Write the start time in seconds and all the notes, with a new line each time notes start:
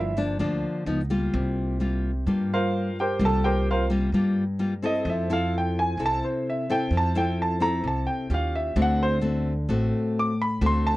Already playing: G1 G2 F3 A#3 D4 E4 E5
0.17 F3 A#3 D4
0.39 D2 D3 F3 A#3 D4
0.86 C#2 F3 B3 D#4
1.10 G3 A#3 F4
1.34 C2 C3
1.80 G3 A#3 F4
2.26 G2 G3 A#3 F4
2.53 F4 A#4 C5 F5
3.00 G4 A#4 C5 G5
3.19 C2 C3 G3 A#3 F4
3.25 A4 A5
3.44 G4 A#4 C5 G5
3.71 F4 A#4 C5 F5
3.90 G3 A#3 F4
4.12 G2 G3 A#3 F4
4.59 G3 A#3 F4
4.82 C4 E4 A4 D#5
5.05 F2 F3
5.10 E5
5.30 C4 E4 A4 F5
5.58 G5
5.79 G#5
5.97 C2 C3 C4 E4 A4
6.06 A5
6.25 C5
6.50 E5
6.70 C4 E4 A4 G5
6.91 F2 F3
6.97 A5
7.15 C4 E4 A4 G5
7.42 A5
7.60 C4 E4 A4 A#5
7.84 C2 C3
7.88 A5
8.07 G5
8.30 D#2 C#4 F4 G4
8.34 F5
8.55 E5
8.76 D2 D3 A3 C4 F#4
8.82 F#5
9.03 C5
9.21 A3 C4 F#4
9.69 A1 A2 A3 C4 F#4
10.19 D6
10.42 B5
10.61 D2 D3 A3 C4 F#4
10.66 C6
10.87 A5